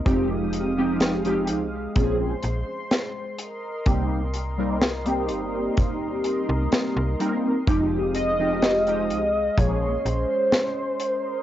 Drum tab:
HH |x-x-xxx-x-x-x-x-|x-x-xxx-x-x-x-x-|x-x-xxx-x-x-x-x-|
SD |----o-------o---|----o-------o---|----o-------o---|
BD |o-------o-------|o-------o-------|o-------o-------|